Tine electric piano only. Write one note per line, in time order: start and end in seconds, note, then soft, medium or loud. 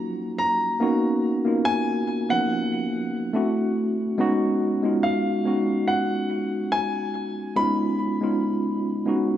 0.00 0.82 F3 medium
0.00 0.82 F#3 medium
0.00 0.80 A#3 medium
0.00 0.81 C#4 medium
0.00 0.82 D#4 medium
0.00 0.82 F4 medium
0.00 0.82 F#4 medium
0.80 1.28 A#3 loud
0.80 1.28 B3 medium
0.80 1.28 C#4 medium
0.80 1.29 D#4 medium
0.80 1.29 F#4 loud
1.45 2.06 A#3 medium
1.45 2.07 B3 medium
1.45 2.07 C#4 medium
1.45 2.07 D#4 medium
1.45 2.08 F4 medium
2.29 3.35 F3 medium
2.29 3.34 A#3 medium
2.29 3.34 B3 medium
2.29 3.34 C#4 medium
2.29 3.35 D#4 medium
3.33 4.03 A3 loud
3.33 4.03 C4 medium
3.33 4.03 D4 medium
3.33 4.04 E4 medium
3.33 4.04 F#4 loud
4.18 4.66 G#3 loud
4.18 4.66 B3 loud
4.18 4.66 C#4 loud
4.18 4.67 D#4 loud
4.18 4.67 F#4 loud
4.83 5.30 G#3 medium
4.83 5.30 B3 medium
4.83 5.31 C#4 medium
4.83 5.31 D#4 medium
4.83 5.31 F4 medium
5.45 6.70 G#3 medium
5.45 6.71 B3 medium
5.45 6.71 C#4 medium
5.45 6.72 D#4 medium
5.45 6.72 F#4 medium
7.56 8.04 G#3 loud
7.56 8.04 B3 medium
7.56 8.04 C#4 loud
7.56 8.05 D#4 medium
7.56 8.05 F4 loud
8.21 8.82 G#3 medium
8.21 8.83 B3 medium
8.21 8.83 C#4 medium
8.21 8.83 D#4 medium
8.21 8.84 F4 medium
9.06 9.37 G#3 medium
9.06 9.37 B3 medium
9.06 9.37 C#4 medium
9.06 9.37 D#4 medium
9.06 9.37 F#4 loud